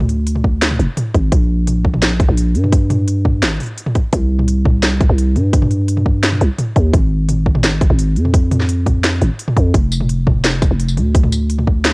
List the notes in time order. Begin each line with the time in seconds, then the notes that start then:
Already playing: D2
0.00 mid tom
0.09 closed hi-hat
0.27 closed hi-hat
0.35 mid tom
0.44 kick
0.62 snare, closed hi-hat
0.71 mid tom
0.79 F1, closed hi-hat
0.97 closed hi-hat, mid tom
1.14 G#1, kick, closed hi-hat
1.32 A#1, kick, closed hi-hat, mid tom
1.67 closed hi-hat, mid tom
1.85 kick
1.94 mid tom
2.02 snare, closed hi-hat
2.20 kick, closed hi-hat
2.29 A#1, mid tom
2.37 closed hi-hat
2.55 G2, closed hi-hat
2.64 mid tom
2.72 kick, closed hi-hat
2.90 closed hi-hat, mid tom
3.08 closed hi-hat
3.25 kick, mid tom
3.43 G#1, snare, closed hi-hat
3.60 closed hi-hat, mid tom
3.63 closed hi-hat
3.66 closed hi-hat
3.78 closed hi-hat
3.86 mid tom
3.95 kick, closed hi-hat
4.13 C2, kick, closed hi-hat
4.39 mid tom
4.48 closed hi-hat
4.65 kick, mid tom
4.83 snare, closed hi-hat
5.01 kick, closed hi-hat, mid tom
5.09 C2
5.18 closed hi-hat
5.36 G2, closed hi-hat, mid tom
5.53 kick, closed hi-hat
5.62 mid tom
5.71 closed hi-hat
5.88 closed hi-hat
5.97 mid tom
6.06 kick
6.23 snare, closed hi-hat
6.32 mid tom
6.41 C2, closed hi-hat
6.58 closed hi-hat, mid tom
6.76 D#2, kick, closed hi-hat
6.94 G#1, kick, closed hi-hat, mid tom
7.29 closed hi-hat, mid tom
7.46 kick
7.55 mid tom
7.64 snare, closed hi-hat
7.81 kick, closed hi-hat
7.90 G#1, mid tom
7.99 closed hi-hat
8.16 F2, closed hi-hat
8.25 mid tom
8.34 kick, closed hi-hat
8.51 closed hi-hat, mid tom
8.60 snare
8.69 closed hi-hat
8.86 kick, closed hi-hat, mid tom
9.04 snare, closed hi-hat
9.22 G#1, closed hi-hat, mid tom
9.39 closed hi-hat
9.48 mid tom
9.57 F2, kick, closed hi-hat
9.74 F1, kick, closed hi-hat
9.92 tambourine
10.01 mid tom
10.09 closed hi-hat
10.27 kick, mid tom
10.44 snare, closed hi-hat
10.62 kick, closed hi-hat, mid tom, tambourine
10.71 F1
10.80 closed hi-hat
10.88 tambourine
10.97 D2, closed hi-hat, mid tom
11.15 kick, closed hi-hat
11.23 mid tom
11.32 closed hi-hat, tambourine
11.50 closed hi-hat
11.59 mid tom
11.67 kick
11.85 snare, closed hi-hat